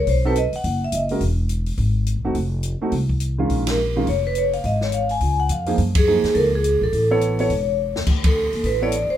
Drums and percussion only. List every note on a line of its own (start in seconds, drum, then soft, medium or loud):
0.07 kick soft
0.07 open hi-hat soft
0.36 closed hi-hat soft
0.53 open hi-hat soft
0.64 kick soft
0.64 open hi-hat soft
0.92 closed hi-hat soft
1.09 open hi-hat soft
1.21 kick soft
1.21 open hi-hat soft
1.49 closed hi-hat soft
1.66 open hi-hat soft
1.78 kick soft
1.78 open hi-hat soft
2.06 closed hi-hat soft
2.35 kick soft
2.35 open hi-hat soft
2.63 closed hi-hat soft
2.92 kick soft
2.92 open hi-hat soft
3.09 kick soft
3.20 closed hi-hat soft
3.50 kick soft
3.50 open hi-hat soft
3.67 snare medium
3.67 ride medium
4.07 kick soft
4.07 open hi-hat soft
4.35 closed hi-hat soft
4.53 open hi-hat soft
4.64 kick soft
4.64 open hi-hat soft
4.81 snare soft
4.92 closed hi-hat soft
5.09 open hi-hat soft
5.21 kick soft
5.21 open hi-hat soft
5.49 closed hi-hat soft
5.66 open hi-hat soft
5.78 kick soft
5.78 open hi-hat soft
5.95 kick medium
5.95 ride medium
6.24 snare soft
6.24 open hi-hat soft
6.35 kick soft
6.35 open hi-hat soft
6.64 closed hi-hat soft
6.93 kick soft
6.93 open hi-hat soft
7.21 closed hi-hat soft
7.39 open hi-hat soft
7.50 kick soft
7.50 open hi-hat soft
7.96 snare medium
8.07 kick medium
8.07 crash medium
8.24 kick medium
8.24 ride medium
8.53 open hi-hat soft
8.64 kick soft
8.64 open hi-hat soft
8.92 closed hi-hat medium